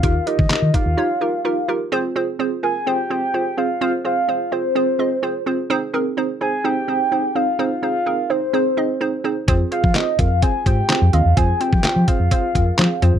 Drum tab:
HH |x-x-x-x---------|----------------|----------------|----------------|
CP |----x-----------|----------------|----------------|----------------|
SD |----o-----------|----------------|----------------|----------------|
BD |o--o--o---------|----------------|----------------|----------------|

HH |----------------|x-x-x-x-x-x-x-x-|x-x-x-x-x-x-x-x-|
CP |----------------|----x-------x---|----x-------x---|
SD |----------------|----o-------o---|----o-------o---|
BD |----------------|o--o--o-o-o-----|o--o--o-o-o-----|